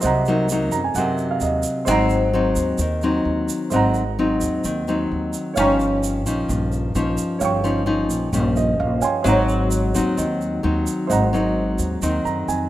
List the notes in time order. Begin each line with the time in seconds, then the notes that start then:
Already playing: F#3 A#3 D#4 D#5 F#5 A#5
0.00 C2 C5 D#5, shaker
0.05 C3 F#5 A#5
0.26 F#3 A#3 D#4, shaker
0.49 F#3 A#3 D#4, shaker
0.72 F#2 A#5, shaker
0.84 G#5
0.95 F#2 C3 F#3 A#3 D#4 F#5, shaker
1.18 shaker
1.31 F5
1.40 D#2 D#5, shaker
1.63 shaker
1.85 G#1 G#2 F#3 C4 D#4 C5 D#5 F#5, shaker
1.91 A#5
2.10 shaker
2.33 F#3 C4 D#4
2.56 D#2, shaker
2.78 D#2 D#3, shaker
3.01 F#3 C4 D#4, shaker
3.25 D#2
3.49 shaker
3.70 G#1 G#2 F#3 C4 D#4 C5 D#5 F#5, shaker
3.76 A#5
3.94 shaker
4.19 F#3 C4 D#4
4.41 D#2, shaker
4.64 D#2 D#3, shaker
4.88 F#3 C4 D#4, shaker
5.11 D#2
5.33 shaker
5.54 G1 G2 F3 C#4 C#5 F5, shaker
5.58 D#4 G5 A#5
5.80 shaker
6.03 shaker
6.26 A#1 F3 C#4 D#4, shaker
6.48 A#1 G2, shaker
6.72 shaker
6.95 A#1 F3 C#4 D#4, shaker
7.18 shaker
7.39 G1 G2 C#5 F5 G5, shaker
7.45 C#6
7.64 F3 C#4 D#4, shaker
7.86 F3 C#4 D#4
8.10 A#1, shaker
8.33 A#1 G2 F3 C#4 D#4, shaker
8.56 D#5, shaker
8.80 A#1 F5
9.01 C#5 F5 G5 G#5 C6, shaker
9.23 G#1 G#2 F#3 C4 D#4 C5 D#5 F#5, shaker
9.28 A#5
9.49 shaker
9.71 shaker
9.94 D#2 F#3 C4 D#4, shaker
10.17 D#2 D#3, shaker
10.41 shaker
10.63 D#2 F#3 C4 D#4
10.87 shaker
11.07 G#1 G#2 C5 D#5 F#5, shaker
11.13 A#5
11.33 F#3 C4 D#4, shaker
11.79 D#2, shaker
12.02 D#2 D#3 F#3 C4 D#4, shaker
12.25 F#2 A#5, shaker
12.48 F2 G#5, shaker